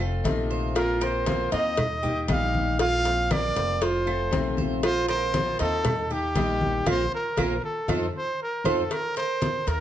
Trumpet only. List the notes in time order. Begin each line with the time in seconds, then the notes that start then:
0.77 A#4
1.03 C5
1.53 D#5
2.31 F5
2.81 F5
3.32 D5
3.83 C5
4.84 C5
5.09 C5
5.61 A4
6.12 G4
6.89 C5
7.14 A#4
7.64 A4
8.17 C5
8.42 A#4
8.67 A4
8.93 A#4
9.17 C5
9.68 A#4